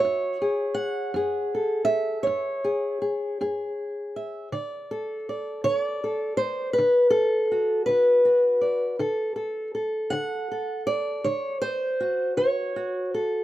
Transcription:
Already playing: F#4 E5
0.00 C#5
0.05 F#2
0.42 G#4
0.74 F#5
1.14 F#2 G#4
1.55 A4
1.85 E5
2.23 F#2 C#5
2.64 G#4
3.02 G#4
3.41 F#2 G#4
4.16 E5
4.52 D3 D5
4.91 A4
5.29 D5
5.64 D3 C#5
5.77 D5
6.04 A4
6.37 C5
6.73 B4
6.78 D3
7.10 A4
7.52 F#4
7.86 D3 B4
8.25 F#4
8.61 D5
8.99 D3 A4
9.36 A4
9.75 A4
10.10 D3 F#5
10.52 A4
10.87 D5
11.24 D3 C#5
11.62 C5
12.00 F#4
12.37 D3 C#5
12.76 F#4
13.14 A4

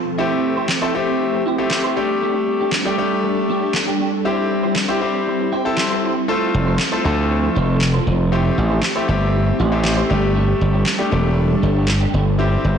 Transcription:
Already playing: F3 C4 A4
0.05 muted clean electric guitar stroke
0.18 A3 C4 E4 G4 C5
0.31 muted clean electric guitar stroke
0.44 muted clean electric guitar stroke
0.56 E4 G4 C5
0.69 muted clean electric guitar stroke, snare, clap
0.82 A3 C4 E4 G4 A4 C5
0.94 A3 C4 E4 G4, muted clean electric guitar stroke
1.07 muted clean electric guitar stroke
1.20 muted clean electric guitar stroke
1.33 muted clean electric guitar stroke
1.46 E4 G4 C5
1.58 A3 C4 E4 G4 C5
1.70 muted clean electric guitar stroke, snare, clap
1.83 E4 G4 C5
1.96 G3 A3 D4 G4 A4
2.09 muted clean electric guitar stroke
2.21 A3 D4 G4
2.34 muted clean electric guitar stroke
2.47 muted clean electric guitar stroke
2.60 A3 D4 G4
2.72 muted clean electric guitar stroke, snare, clap
2.85 G3 A3 D4 G4
2.98 G3 A3 D4 G4, muted clean electric guitar stroke
3.11 muted clean electric guitar stroke
3.23 muted clean electric guitar stroke
3.36 muted clean electric guitar stroke
3.49 A3 D4 G4
3.61 A3 D4 G4
3.74 muted clean electric guitar stroke, snare, clap
3.87 A3 D4 G4
4.00 A3 D4 G4
4.13 muted clean electric guitar stroke
4.25 G3 C4 E4 G4 C5
4.38 muted clean electric guitar stroke
4.51 muted clean electric guitar stroke
4.63 E4 G4 C5
4.75 muted clean electric guitar stroke, snare, clap
4.88 G3 C4 E4 G4 C5
5.01 G3 C4 E4 G4, muted clean electric guitar stroke
5.14 muted clean electric guitar stroke
5.27 muted clean electric guitar stroke
5.40 muted clean electric guitar stroke
5.52 E4 G4 C5 G5
5.65 G3 C4 E4 G4 A4 C5
5.77 C6, muted clean electric guitar stroke, snare, clap
5.90 E4 G4 C5
6.03 E4 G4 C5
6.16 muted clean electric guitar stroke
6.28 F3 A3 C4 F4 A4 C5
6.41 muted clean electric guitar stroke
6.54 F1, muted clean electric guitar stroke
6.66 F4 A4 C5
6.79 muted clean electric guitar stroke, snare, clap
6.92 A3 C4 F4 A4 C5
7.04 D2 A3 C4 F4 A4, muted clean electric guitar stroke
7.17 muted clean electric guitar stroke
7.30 muted clean electric guitar stroke
7.43 muted clean electric guitar stroke
7.55 F1 F4 A4 C5
7.68 F4 A4 C5
7.81 muted clean electric guitar stroke, snare, clap
7.93 F4 A4 C5
8.06 F1 F4 A4 C5
8.19 muted clean electric guitar stroke
8.32 A3 C4 E4 G4 C5
8.45 muted clean electric guitar stroke
8.58 A1, muted clean electric guitar stroke
8.70 E4 G4 C5
8.82 muted clean electric guitar stroke, snare, clap
8.95 A3 C4 E4 G4 C5
9.08 G1 A3 C4 E4 G4, muted clean electric guitar stroke
9.21 muted clean electric guitar stroke
9.34 muted clean electric guitar stroke
9.47 muted clean electric guitar stroke
9.59 A1 E4 G4 C5
9.72 A3 C4 E4 G4 C5
9.84 muted clean electric guitar stroke, snare, clap
9.97 E4 G4 C5
10.10 G1 G3 A3 D4 G4 A4
10.23 muted clean electric guitar stroke
10.35 A3 D4 G4
10.48 muted clean electric guitar stroke
10.61 G1
10.73 A3 D4 G4
10.86 muted clean electric guitar stroke, snare, clap
10.98 G3 A3 D4 G4
11.11 E1 G3 A3 D4 G4, muted clean electric guitar stroke
11.24 muted clean electric guitar stroke
11.37 muted clean electric guitar stroke
11.50 muted clean electric guitar stroke
11.62 G1 A3 D4 G4
11.75 A3 D4 G4
11.87 muted clean electric guitar stroke, snare, clap
12.00 A3 D4 G4
12.13 G1 A3 D4 G4
12.26 muted clean electric guitar stroke
12.39 G3 C4 E4 G4 C5
12.51 muted clean electric guitar stroke
12.64 G1, muted clean electric guitar stroke

